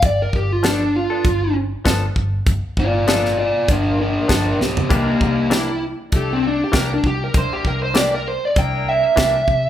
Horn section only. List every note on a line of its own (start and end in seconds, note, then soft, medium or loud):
4.90 5.51 A#3 medium
4.90 5.51 D4 medium
4.90 5.52 E4 medium
4.90 5.51 A#4 medium
6.11 6.73 A3 medium
6.11 6.73 D4 medium
6.11 6.73 E4 medium
6.11 6.73 A4 medium
7.34 7.95 A#3 medium
7.34 7.95 D4 medium
7.34 7.95 E4 medium
7.34 7.95 A#4 medium
8.56 9.17 A#3 medium
8.56 9.17 D4 medium
8.56 9.17 E4 medium
8.56 9.17 A#4 medium